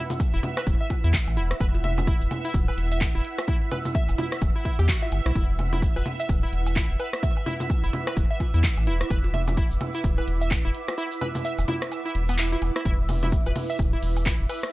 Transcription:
Already playing: E4 B4 E5 F#5 E6
0.10 cowbell, low conga, cabasa
0.20 kick, cabasa, low woodblock
0.34 E1 E4, cabasa
0.43 open hi-hat, low conga
0.57 B4, cross-stick, open hi-hat, cabasa, low woodblock
0.67 E1, kick, cabasa
0.81 E5
0.90 kick, open hi-hat, cowbell, low woodblock
1.04 E2 E4, cabasa
1.14 kick, clap, cabasa
1.27 A1, low woodblock
1.37 E1 E4, open hi-hat
1.51 cross-stick, cabasa
1.60 E1 B4, kick, cabasa, low woodblock
1.74 cowbell
1.84 E5, open hi-hat, low conga
1.98 low conga, cabasa, low woodblock
2.07 E4, kick, cabasa
2.21 E1, cabasa
2.31 open hi-hat, low conga, low woodblock
2.45 E4, open hi-hat, cabasa
2.54 D1, kick, cowbell, cabasa
2.68 B4, low woodblock
2.77 E1, open hi-hat
2.92 E5, cabasa
3.01 kick, clap, cabasa, low woodblock
3.15 E1 E4
3.25 open hi-hat
3.38 cross-stick, cowbell, cabasa, low woodblock
3.48 E4, kick, cabasa
3.71 B4, open hi-hat, low conga, low woodblock
3.85 low conga, cabasa
3.95 E5, kick, cabasa
4.09 E1, cabasa, low woodblock
4.18 E4, open hi-hat, cowbell, low conga
4.32 cross-stick, open hi-hat, cabasa
4.42 E1, kick, cabasa, low woodblock
4.56 E4, open hi-hat
4.65 E4, kick, open hi-hat
4.79 E2 G4, cabasa, low woodblock
4.89 F#4, kick, clap, cabasa
5.02 E5, cowbell
5.12 G1, open hi-hat, low woodblock
5.26 B1 E4, cross-stick, cabasa
5.35 E1 E4, kick, cabasa
5.59 open hi-hat, low conga, low woodblock
5.73 E4, low conga, cabasa
5.82 kick, cabasa
5.96 E1 B4, cowbell, cabasa, low woodblock
6.06 open hi-hat, low conga
6.20 E5, open hi-hat, cabasa
6.29 D1, kick, cabasa, low woodblock
6.43 E4
6.53 E1, open hi-hat
6.66 cabasa, low woodblock
6.76 E4, kick, clap, cowbell, cabasa
6.90 E1
7.00 B4, open hi-hat, low woodblock
7.13 cross-stick, cabasa
7.23 E5, kick, cabasa
7.31 D6
7.37 low woodblock
7.46 E4, open hi-hat, low conga
7.60 cowbell, low conga, cabasa
7.70 kick, cabasa, low woodblock
7.84 E1 E4, cabasa
7.93 open hi-hat, low conga
8.07 B4, cross-stick, open hi-hat, cabasa, low woodblock
8.17 E1, kick, cabasa
8.31 E5
8.40 kick, open hi-hat, cowbell, low woodblock
8.54 E2 E4, cabasa
8.64 kick, clap, cabasa
8.77 A1, low woodblock
8.87 E1 E4, open hi-hat
9.01 cross-stick, cabasa
9.10 E1 B4, kick, cabasa, low woodblock
9.24 cowbell
9.34 E5, open hi-hat, low conga
9.48 low conga, cabasa, low woodblock
9.57 E4, kick, cabasa
9.71 E1, cabasa
9.81 open hi-hat, low conga, low woodblock
9.95 E4, open hi-hat, cabasa
10.04 D1, kick, cowbell, cabasa
10.18 B4, low woodblock
10.28 E1, open hi-hat
10.41 E5, cabasa
10.51 kick, clap, cabasa, low woodblock
10.65 E1 E4
10.75 open hi-hat
10.88 cross-stick, cowbell, cabasa, low woodblock
10.98 E4, cabasa
11.12 cabasa
11.21 B4, open hi-hat, low conga, low woodblock
11.35 low conga, cabasa
11.45 E5, cabasa
11.59 E1, cabasa, low woodblock
11.68 E4, open hi-hat, cowbell, low conga
11.82 cross-stick, open hi-hat, cabasa
11.92 cabasa, low woodblock
12.05 E4, open hi-hat
12.15 E1, open hi-hat
12.29 B3, cabasa, low woodblock
12.38 E4, clap, cabasa
12.52 E4, cowbell, cabasa
12.62 E1, open hi-hat, low woodblock
12.76 E4, cross-stick, cabasa
12.85 E1 E4 E5, kick, cabasa
13.09 open hi-hat, ride, low conga, low woodblock
13.23 E4, low conga, cabasa
13.32 kick, cabasa
13.46 E1 B4, cowbell, cabasa, low woodblock
13.56 open hi-hat, ride, low conga
13.70 E5, open hi-hat, cabasa
13.79 D1, kick, cabasa, low woodblock
13.93 E4
14.03 E1, open hi-hat, ride
14.17 cabasa, low woodblock
14.26 E4, kick, clap, cowbell, cabasa
14.40 E1
14.49 B4, open hi-hat, ride, low woodblock
14.63 cross-stick, cabasa

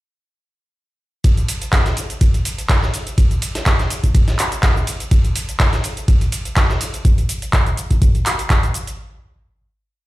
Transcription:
1.24 kick, closed hi-hat, ride, shaker
1.37 closed hi-hat, shaker
1.49 open hi-hat, ride, shaker
1.62 closed hi-hat, shaker
1.73 kick, snare, clap, closed hi-hat, ride, shaker
1.86 snare, closed hi-hat, shaker
1.97 open hi-hat, ride, shaker
2.10 closed hi-hat, shaker
2.21 kick, closed hi-hat, ride, shaker
2.34 closed hi-hat, ride, shaker
2.45 open hi-hat, ride, shaker
2.58 closed hi-hat, shaker
2.69 kick, snare, clap, closed hi-hat, ride, shaker
2.83 snare, shaker
2.94 open hi-hat, ride, shaker
3.07 closed hi-hat, shaker
3.18 kick, closed hi-hat, ride, shaker
3.31 closed hi-hat, shaker
3.42 open hi-hat, ride, shaker
3.55 snare, closed hi-hat, shaker
3.66 kick, snare, clap, closed hi-hat, ride, shaker
3.79 snare, closed hi-hat, shaker
3.90 open hi-hat, ride, shaker
4.04 kick, closed hi-hat, shaker
4.15 kick, closed hi-hat, ride, shaker
4.28 snare, closed hi-hat, shaker
4.39 clap, open hi-hat, ride, shaker
4.52 closed hi-hat, shaker
4.63 kick, snare, clap, closed hi-hat, ride, shaker
4.77 shaker
4.87 open hi-hat, ride, shaker
5.00 closed hi-hat, shaker
5.11 kick, closed hi-hat, ride, shaker
5.24 closed hi-hat, shaker
5.36 open hi-hat, ride, shaker
5.49 closed hi-hat, shaker
5.60 kick, snare, clap, closed hi-hat, ride, shaker
5.73 snare, closed hi-hat, shaker
5.84 open hi-hat, ride, shaker
5.97 closed hi-hat, shaker
6.08 kick, closed hi-hat, ride, shaker
6.21 closed hi-hat, ride, shaker
6.32 open hi-hat, ride, shaker
6.45 closed hi-hat, shaker
6.56 kick, snare, clap, closed hi-hat, ride, shaker
6.70 snare, shaker
6.81 open hi-hat, ride, shaker
6.94 closed hi-hat, shaker
7.05 kick, closed hi-hat, shaker
7.18 closed hi-hat, shaker
7.29 open hi-hat, shaker
7.42 closed hi-hat, shaker
7.53 kick, clap, closed hi-hat, shaker
7.66 closed hi-hat, shaker
7.77 open hi-hat, shaker
7.91 kick, closed hi-hat, shaker
8.02 kick, closed hi-hat, shaker
8.15 closed hi-hat, shaker
8.26 clap, open hi-hat, shaker
8.39 closed hi-hat, shaker
8.50 kick, clap, closed hi-hat, shaker
8.63 closed hi-hat, shaker
8.74 open hi-hat, shaker
8.87 closed hi-hat, shaker

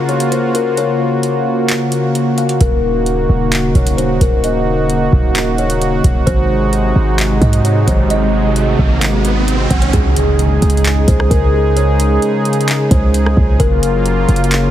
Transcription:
Already playing: C#3 A#3 F4 F#4
0.09 C#5, closed hi-hat
0.20 closed hi-hat
0.32 C5, closed hi-hat
0.55 A#4, closed hi-hat
0.77 C#5, closed hi-hat
1.23 closed hi-hat
1.69 clap, closed hi-hat
1.92 closed hi-hat
2.15 closed hi-hat
2.38 F5, closed hi-hat
2.49 closed hi-hat
2.61 D#1 D#4 A#4, kick, closed hi-hat
3.06 closed hi-hat
3.29 D#1
3.52 clap, closed hi-hat
3.75 D#1 C#5, kick, closed hi-hat
3.87 closed hi-hat
3.97 C5, closed hi-hat
4.21 D#1 A#4, kick, closed hi-hat
4.44 D#5, closed hi-hat
4.90 closed hi-hat
5.13 D#1, kick
5.35 clap, closed hi-hat
5.58 C#5, closed hi-hat
5.70 closed hi-hat
5.82 closed hi-hat
6.04 D#1, kick, closed hi-hat
6.26 G#1 C3 G#3 D#4 C5, kick, closed hi-hat, riser
6.73 closed hi-hat
6.96 G#1
7.19 clap, closed hi-hat
7.41 G#2 D#5, kick, closed hi-hat
7.53 closed hi-hat
7.65 C#5, closed hi-hat
7.87 G#1 C5, kick, closed hi-hat
8.10 D#5, closed hi-hat
8.56 closed hi-hat
8.79 G#1, kick
9.02 clap, closed hi-hat
9.25 closed hi-hat
9.48 closed hi-hat
9.71 G#1 F#5, kick, closed hi-hat
9.82 closed hi-hat
9.93 C#2 C#3 G#3 D#4 G#4, kick, closed hi-hat, impact
10.16 closed hi-hat
10.39 closed hi-hat
10.62 C#2, closed hi-hat
10.70 closed hi-hat
10.77 closed hi-hat
10.85 clap, closed hi-hat
11.08 C#2 C5, kick, closed hi-hat
11.20 cross-stick
11.30 C#2 A#4, kick, closed hi-hat
11.54 G#4
11.76 C#5, closed hi-hat
12.00 closed hi-hat
12.22 closed hi-hat
12.45 closed hi-hat
12.53 closed hi-hat
12.61 closed hi-hat
12.68 clap, closed hi-hat
12.91 C#2 C5, kick, closed hi-hat
13.14 closed hi-hat
13.26 cross-stick
13.37 C#2, kick
13.60 F#1 C#3 F#3 A#3 F4 A#4, kick, closed hi-hat
13.83 closed hi-hat
14.06 closed hi-hat
14.29 F#1, closed hi-hat
14.36 closed hi-hat
14.44 closed hi-hat
14.51 clap, closed hi-hat

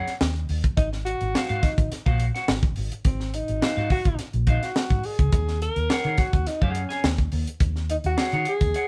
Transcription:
Already playing: G#4 C#5 F#5
0.07 snare, closed hi-hat
0.21 D#2, snare
0.36 closed hi-hat
0.49 D#2, open hi-hat
0.64 kick, closed hi-hat
0.77 G#1 D#4, kick, closed hi-hat
0.93 snare, closed hi-hat
1.05 F#4, closed hi-hat
1.21 G#1, closed hi-hat
1.34 F#4 C5 F5, snare
1.49 G#2 F#4 C5 F5, closed hi-hat
1.63 D#4, kick, snare, closed hi-hat
1.78 G#1, kick, closed hi-hat
1.92 snare, closed hi-hat
2.06 A#1 F#4 C5 F5, kick, closed hi-hat
2.20 closed hi-hat
2.35 F#4 C5 F#5, snare, closed hi-hat
2.48 G#1, snare
2.63 kick, closed hi-hat
2.76 G#1, open hi-hat
2.92 closed hi-hat
3.05 G#1 C4, kick, closed hi-hat
3.20 snare
3.34 D#4, closed hi-hat
3.48 G#1, closed hi-hat
3.62 F#4 C5 F5, muted fingered electric bass stroke, snare
3.77 G#2 F#4 C5 F5
3.90 F#4, kick, open hi-hat
4.05 G#1, kick, closed hi-hat
4.19 muted fingered electric bass stroke, snare, closed hi-hat
4.33 A#1, closed hi-hat
4.47 D#4 F#4 C5 F5, kick, closed hi-hat
4.63 F#4, snare, closed hi-hat
4.76 snare
4.90 G#2, kick, closed hi-hat
5.03 G#4, open hi-hat
5.19 C#2, kick, closed hi-hat
5.32 D#2, kick, closed hi-hat
5.48 snare, closed hi-hat
5.62 A#4, closed hi-hat
5.76 D#2, closed hi-hat
5.89 G#4 C#5 F#5, muted fingered electric bass stroke, snare
6.04 D#3 G#4 C#5 F#5, closed hi-hat
6.18 F#4, kick, snare, closed hi-hat
6.33 D#2, kick, closed hi-hat
6.47 D#4, muted fingered electric bass stroke, snare, closed hi-hat
6.61 F#2 C#4 G#4 C#5 F#5, kick
6.75 closed hi-hat
6.89 G#4 C#5 G#5, snare, closed hi-hat
7.04 D#2, snare
7.18 kick, closed hi-hat
7.32 D#2, open hi-hat
7.47 closed hi-hat
7.60 D#2, kick, closed hi-hat
7.76 snare
7.90 D#4, closed hi-hat
8.04 D#2 F#4, closed hi-hat
8.17 G#4 C#5 F#5, muted fingered electric bass stroke, snare
8.32 D#3 G#4 C#5 F#5, closed hi-hat
8.45 G#4, closed hi-hat
8.61 D#2, kick, closed hi-hat
8.74 G#4 C#5 F#5, muted fingered electric bass stroke, closed hi-hat

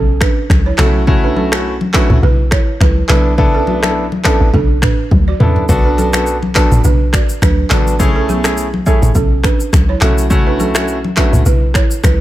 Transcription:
Already playing: B1
0.21 D4 B4, finger snap, kick, cross-stick
0.50 C#2, finger snap, kick, cross-stick, high conga
0.66 E4 C#5
0.78 B1 A3 C#4 E4 F#4 A4, finger snap, cross-stick, clap, high conga, low conga
1.07 A3 C#4 E4 F#4, kick, low conga
1.24 D4 B4
1.36 C#4 A4, high conga
1.52 A3 C#4 E4 F#4, finger snap, cross-stick
1.81 high conga
1.94 A3 C#4 D4 E4 F#4 B4, finger snap, kick, cross-stick, clap
2.10 C#2, mid tom
2.23 B1 E4 B4, low conga
2.51 E4 C#5, finger snap, kick, cross-stick
2.81 C#2 E4 B4, finger snap, kick, cross-stick, high conga
3.09 B1 B3 D4 E4 A4 B4, finger snap, cross-stick, clap, high conga, low conga
3.38 B3 D4 E4 A4, kick, low conga
3.54 C#4 A4
3.67 A3 F#4, high conga
3.83 B3 D4 E4 A4, finger snap, cross-stick, high conga
4.12 high conga
4.24 B3 C#4 D4 E4 A4, finger snap, kick, cross-stick, clap
4.41 A1
4.54 B1 D4 A4, kick, low conga
4.82 D4 B4, finger snap, kick, cross-stick, mid tom
5.11 D2, kick, high tom, high conga
5.28 F#4 D5
5.40 E2 B3 C#4 D4 E4 A4, mid tom, high conga, low conga
5.56 floor tom
5.69 B1 B3 D4 F#4 A4, kick, low conga, shaker
5.86 D4 B4
5.98 C#4 A4, high conga, shaker
6.13 B3 D4 F#4 A4, finger snap, cross-stick, shaker
6.26 shaker
6.42 high conga
6.55 B3 D4 F#4 A4 B4, finger snap, kick, cross-stick, clap, shaker
6.71 A1, mid tom, shaker
6.84 B1 D4 B4, low conga, shaker
7.13 F#4 D5, finger snap, kick, cross-stick, shaker
7.29 shaker
7.42 D2 D4 B4, finger snap, kick, cross-stick, high conga, shaker
7.70 A1 B3 D4 F#4 A4 B4, finger snap, cross-stick, clap, high conga, low conga, shaker
7.87 shaker
7.99 B1 A3 C#4 E4 G#4, kick, low conga, shaker
8.16 C#4 A4
8.29 B3 G#4, high conga, shaker
8.44 A3 C#4 E4 G#4, finger snap, cross-stick, shaker
8.57 shaker
8.74 high conga
8.86 A3 C#4 E4 G#4 A4, kick, shaker
9.02 A1, mid tom, shaker
9.15 B1 C#4 A4, kick, low conga, shaker
9.44 D4 B4, finger snap, kick, cross-stick, shaker
9.60 shaker
9.73 C#2, finger snap, kick, cross-stick, high conga, shaker
9.89 E4 C#5
10.01 B1 A3 C#4 E4 F#4 A4, finger snap, cross-stick, clap, high conga, low conga, shaker
10.18 shaker
10.30 A3 C#4 E4 F#4, kick, low conga, shaker
10.47 D4 B4
10.60 C#4 A4, high conga, shaker
10.75 A3 C#4 E4 F#4, finger snap, cross-stick, shaker
10.88 shaker
11.04 high conga
11.17 A3 C#4 D4 E4 F#4 B4, finger snap, kick, cross-stick, clap, shaker
11.33 C#2, mid tom, shaker
11.46 B1 E4 B4, low conga, shaker
11.74 E4 C#5, finger snap, kick, cross-stick, shaker
11.91 shaker
12.04 C#2 E4 B4, finger snap, kick, cross-stick, high conga, shaker

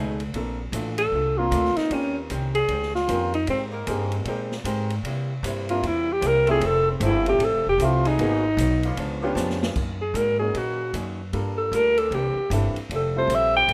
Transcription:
Already playing: C#2 B2 A3 C#4 D#4 F#4 G#4 A4
0.20 ride
0.34 A#1 A#2 A3 A#3 C4 D4 F4 A4, ride
0.72 A1 A#2 A3 D4 F4, hi-hat pedal, ride
0.98 A4, ride
1.12 C2 A#2 A3 D4 F4
1.38 A#3 C4 D4 F4 A#4
1.51 D2 A#2 A3 D4 F4, hi-hat pedal, ride
1.65 snare
1.76 D#4, muted upright bass stroke, snare, ride
1.90 D#2 D#3 A#3 C4 C#4 F4 G4 C5, ride
2.30 C2 D#3 C#4 G4 C5, hi-hat pedal, ride
2.55 G#4, ride
2.68 C#2 D#3 C#4 G4 C5, ride
2.82 snare
2.95 F4, snare
3.08 F2 D#3 A#3 C4 C#4 F4 G4 A#4 C5, hi-hat pedal, ride
3.34 D#4, ride
3.47 G#2 G#3 C4 G4 A#4, ride
3.72 A#3 C4 D#4 A#4
3.87 G2 G#3 A#3 C4 D#4 G4 G#4 A#4, hi-hat pedal, ride
4.12 ride
4.25 A#2 G#3 A#3 C4 D#4 G4 A#4, ride
4.52 snare
4.64 G#2 G#3 C4 G4 A#4, hi-hat pedal, ride
4.90 ride
5.03 C3 G3, ride
5.07 A#3 E4
5.43 G2 C3 G3 A#3 E4, hi-hat pedal, ride
5.69 A#3 C4 D4 E4 F4 G4, ride
5.83 E2 C3 G3 A#3 E4, ride
5.87 E4
6.13 G4
6.21 C2 C3 G3 A#3 E4, hi-hat pedal, ride
6.27 A#4
6.46 F3 A3 C4 E4 F4 G4 A4, ride
6.51 G#4
6.60 F1 F3 A3 C4 E4, ride
6.66 A4
6.92 C4
7.00 G1 F3 A3 C4 E4, hi-hat pedal, ride
7.06 E4
7.26 A3 C4 E4 F4 G4, ride
7.39 A1 F3 A3 C4, ride
7.43 E4 A4
7.52 F1
7.67 E1 G4
7.78 C2 F3 A3 C4 E4, hi-hat pedal, ride
7.82 A3 C4 E4 F4 G4
8.05 F#3 B3 D#4 G#4, ride
8.19 G#1 G#2 F#3 A#3 B3 D#4 F#4 G#4, ride
8.57 B1 G#2 F#3 B3, hi-hat pedal, ride
8.61 D#4
8.83 D3 B3 C#4 F4, ride
8.97 C#2 C#3 F3 B3 D4, ride
9.22 D3 B3 C#4 D4 F4 G4
9.35 F2 C#3 F3 B3 D4, snare, hi-hat pedal
9.50 snare
9.63 snare
9.75 F#2 D#3 A#3 C#4, kick, crash
10.02 G#4
10.14 F#2 G#2 D#3 A#3 C#4 A#4, hi-hat pedal, ride
10.39 A#3 C#4 D#4 F#4 G#4
10.55 F#2 A#2 D#3 A#3 C#4 F#4, ride
10.93 F#2 D#3 A#3 C#4, hi-hat pedal, ride
11.33 G2 G3 A#3 D4 F4 A4, ride
11.58 A4
11.72 D2 G3 A#3 F4 A4 A#4, hi-hat pedal, ride
11.98 E3 C4 D4 A4 A#4, ride
12.11 C2 C3 E3 A#3 D4 G4, ride
12.36 muted upright bass stroke
12.50 G1 C3 E3 G3 A#3 C4 D4 E4 A4, hi-hat pedal, ride
12.75 muted upright bass stroke, ride
12.89 F1 F3 A3 E4 G4, ride
12.95 A4
13.16 G3 C4 E4 F4 A4 C5
13.27 A#1 F3 A3, hi-hat pedal, ride
13.32 E4 G4 E5
13.54 F3 A3 E4 G4 G5
13.68 A1 F3 A3, ride

